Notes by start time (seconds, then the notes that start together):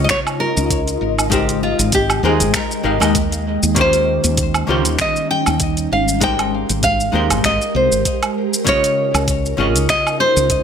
Already playing: C#3 C#4 D#4 F4 C#5 D#5
0.04 D#5
0.09 C#5, finger snap, kick, closed hi-hat, shaker
0.27 low woodblock, shaker
0.40 A#4
0.57 C#2, shaker
0.70 kick, closed hi-hat, shaker
0.88 closed hi-hat, shaker
1.01 G#1
1.19 low woodblock, shaker
1.30 G#3 D#4 G4 A#4 C5 G5, kick, closed hi-hat, shaker
1.49 closed hi-hat, shaker
1.63 F4
1.79 G#1, closed hi-hat, shaker
1.92 G4, kick, closed hi-hat, shaker
2.10 low woodblock, shaker
2.23 D#2 G#3 D#4 G#4 A#4 C5 G5
2.40 G#1, closed hi-hat, shaker
2.54 A#4, finger snap, kick, closed hi-hat, shaker
2.71 shaker
2.83 G#1 G#3 D#4 G4 A#4 F5
3.00 D#2 G#3 D#4 G4 A#4 D#5, low woodblock, shaker
3.15 kick, closed hi-hat, shaker
3.32 closed hi-hat, shaker
3.63 D#2, shaker
3.75 D#3 G3 A#3 C#4 D#4 F4 G4 C5, kick, closed hi-hat, shaker
3.81 C5
3.93 closed hi-hat, shaker
4.24 D#2, closed hi-hat, shaker
4.37 kick, closed hi-hat, shaker
4.54 low woodblock, shaker
4.67 C#2 D#3 A#3 C#4 F4 G4 C5
4.85 D#2, closed hi-hat, shaker
4.99 D#5, finger snap, kick, closed hi-hat, shaker
5.16 shaker
5.31 G5
5.46 D#2, low woodblock, shaker
5.60 kick, closed hi-hat, shaker
5.77 closed hi-hat, shaker
5.92 G#1 F5
6.08 shaker
6.20 G#3 D#4 G4 A#4 C5 G5, kick, closed hi-hat, shaker
6.39 closed hi-hat, low woodblock, shaker
6.69 G#1, closed hi-hat, shaker
6.83 F5, kick, closed hi-hat, shaker
7.00 shaker
7.12 D#2 G#3 D#4 G4 A#4 C5
7.30 G#1, closed hi-hat, low woodblock, shaker
7.44 G#1 D#5, finger snap, kick, closed hi-hat, shaker
7.62 shaker
7.75 C2 C5
7.92 G#1, shaker
8.05 kick, closed hi-hat, shaker
8.23 closed hi-hat, low woodblock, shaker
8.54 shaker
8.64 C#3 C#4 D#4 F4 C#5 D#5, kick, closed hi-hat, shaker
8.69 C#5
8.84 closed hi-hat, shaker
9.14 C#2, closed hi-hat, low woodblock, shaker
9.28 kick, closed hi-hat, shaker
9.46 shaker
9.57 G#1 C#3 C#4 F4 G#4 D#5
9.75 C#2, closed hi-hat, shaker
9.89 D#5, finger snap, kick, closed hi-hat, shaker
10.07 low woodblock, shaker
10.20 C5
10.36 C#2, shaker
10.50 kick, closed hi-hat, shaker